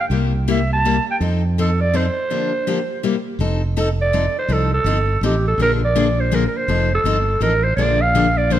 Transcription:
0.00 0.06 F5 medium
0.10 0.98 C2 medium
0.10 0.31 C3 medium
0.10 0.32 G3 medium
0.10 0.32 A#3 medium
0.10 0.32 E4 medium
0.10 0.32 G4 medium
0.48 0.58 C3 medium
0.48 0.58 G3 medium
0.48 0.59 A#3 medium
0.48 0.59 E4 medium
0.48 0.59 G4 loud
0.48 0.70 E5 medium
0.73 1.05 A5 loud
0.85 0.96 C3 medium
0.85 0.96 G3 medium
0.85 0.96 A#3 medium
0.85 0.96 E4 medium
0.85 0.96 G4 medium
1.11 1.16 G5 medium
1.20 2.08 F2 medium
1.20 1.42 F3 medium
1.20 1.42 C4 medium
1.20 1.42 D#4 medium
1.20 1.42 A4 medium
1.58 1.69 F3 medium
1.58 1.69 C4 medium
1.58 1.69 D#4 medium
1.58 1.69 A4 medium
1.58 1.82 A4 medium
1.81 1.97 D5 loud
1.93 2.05 F3 medium
1.93 2.05 C4 medium
1.93 2.05 D#4 medium
1.93 2.05 A4 medium
1.93 3.27 C5 medium
2.30 2.51 D3 medium
2.30 2.51 F3 medium
2.30 2.51 A#3 medium
2.30 2.51 D4 medium
2.30 2.52 G4 medium
2.67 2.78 D3 medium
2.67 2.78 F3 medium
2.67 2.78 A#3 medium
2.67 2.78 D4 medium
2.67 2.78 G4 medium
3.03 3.14 C3 medium
3.03 3.15 G3 medium
3.03 3.14 A#3 medium
3.03 3.15 E4 medium
3.03 3.15 G4 medium
3.39 4.27 F1 medium
3.39 3.61 F3 medium
3.39 3.61 C4 medium
3.39 3.61 D#4 medium
3.39 3.61 A4 medium
3.77 3.87 F3 medium
3.77 3.88 C4 medium
3.77 3.88 D#4 loud
3.77 3.88 A4 medium
3.77 3.89 A4 medium
4.01 4.34 D5 medium
4.13 4.24 F3 medium
4.13 4.24 C4 medium
4.13 4.24 D#4 medium
4.13 4.24 A4 medium
4.39 4.54 C5 medium
4.48 4.78 C2 medium
4.48 4.70 F3 medium
4.48 4.70 C4 medium
4.48 4.70 D#4 medium
4.48 4.70 A4 medium
4.53 4.73 A4 medium
4.74 5.20 A4 medium
4.84 5.16 G1 medium
4.84 4.97 F3 medium
4.84 4.97 C4 medium
4.84 4.97 D#4 loud
4.84 4.98 A4 medium
5.21 5.53 A1 medium
5.21 5.34 F3 medium
5.21 5.34 C4 medium
5.21 5.34 D#4 medium
5.21 5.34 A4 medium
5.25 5.45 G4 medium
5.48 5.60 A4 medium
5.58 6.46 A#1 medium
5.58 5.80 D3 medium
5.58 5.80 F3 medium
5.58 5.80 A#3 medium
5.58 5.80 D4 medium
5.58 5.80 G#4 medium
5.62 5.71 A#4 loud
5.85 6.22 D5 loud
5.96 6.06 D3 medium
5.96 6.07 F3 medium
5.96 6.06 A#3 medium
5.96 6.07 D4 medium
5.96 6.07 G#4 loud
6.20 6.37 C5 medium
6.31 6.43 D3 medium
6.31 6.43 F3 medium
6.31 6.43 A#3 medium
6.31 6.43 D4 medium
6.31 6.43 G#4 medium
6.31 6.47 A#4 medium
6.48 6.59 A#4 medium
6.57 6.92 C5 loud
6.68 6.97 F1 medium
6.68 6.89 F3 medium
6.68 6.89 C4 medium
6.68 6.89 D#4 medium
6.68 6.90 A4 medium
6.95 7.40 A4 medium
7.04 7.35 G1 medium
7.04 7.16 F3 medium
7.04 7.16 C4 medium
7.04 7.16 D#4 medium
7.04 7.16 A4 loud
7.40 7.72 A1 medium
7.40 7.52 F3 medium
7.40 7.52 C4 medium
7.40 7.52 D#4 medium
7.40 7.53 A4 medium
7.40 7.65 A#4 loud
7.64 7.74 C5 medium
7.76 8.59 A#1 medium
7.76 7.99 D3 medium
7.76 7.99 F3 medium
7.76 7.99 A#3 medium
7.76 7.99 D4 medium
7.76 7.99 G#4 medium
7.76 7.81 C#5 medium
7.76 8.03 D5 loud
8.02 8.39 F5 loud
8.15 8.26 D3 medium
8.15 8.26 F3 medium
8.15 8.26 A#3 medium
8.15 8.26 D4 loud
8.15 8.26 G#4 medium
8.37 8.54 D5 loud
8.50 8.59 D3 medium
8.50 8.59 F3 medium
8.50 8.59 A#3 medium
8.50 8.59 D4 medium
8.50 8.59 G#4 medium
8.50 8.59 C5 loud

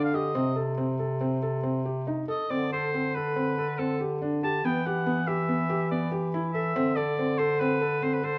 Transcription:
0.00 0.31 D3 medium
0.04 0.16 F5 medium
0.14 0.28 G4 medium
0.14 0.57 D#5 medium
0.35 2.34 C3 medium
0.35 0.50 C4 medium
0.56 0.71 A4 medium
0.78 0.93 C4 medium
0.99 1.14 A4 medium
1.21 1.36 C4 medium
1.43 1.57 A4 medium
1.63 1.78 C4 medium
1.85 2.00 G4 medium
2.07 2.22 D#4 medium
2.28 2.44 A4 medium
2.28 2.51 D#5 medium
2.50 4.61 D3 medium
2.50 2.65 C4 medium
2.50 2.72 D5 medium
2.72 2.88 A4 medium
2.72 3.16 C5 medium
2.94 3.09 C4 medium
3.15 3.31 A4 medium
3.15 3.80 B4 medium
3.36 3.51 C4 medium
3.58 3.73 A4 medium
3.78 3.94 C4 medium
3.78 4.00 A4 medium
4.00 4.15 G4 medium
4.22 4.37 D4 medium
4.43 4.58 G4 medium
4.43 4.67 A5 medium
4.64 6.71 E3 medium
4.64 4.80 B3 medium
4.64 4.87 G5 medium
4.86 5.01 G4 medium
4.86 5.29 F#5 medium
5.06 5.21 B3 medium
5.27 5.42 G4 medium
5.27 5.90 E5 medium
5.49 5.63 B3 medium
5.70 5.84 G4 medium
5.91 6.06 B3 medium
5.91 6.11 D5 medium
6.12 6.27 G4 medium
6.34 6.49 E4 medium
6.54 6.69 A4 medium
6.54 6.97 E5 medium
6.76 8.38 D3 medium
6.76 6.90 C4 medium
6.96 7.11 A4 medium
6.96 7.40 D5 medium
7.19 7.33 C4 medium
7.38 7.54 A4 medium
7.38 7.61 C5 medium
7.59 7.75 C4 medium
7.59 8.04 B4 medium
7.81 7.96 A4 medium
8.02 8.17 C4 medium
8.02 8.15 C5 medium
8.13 8.26 B4 medium
8.23 8.38 A4 medium
8.23 8.38 C5 medium

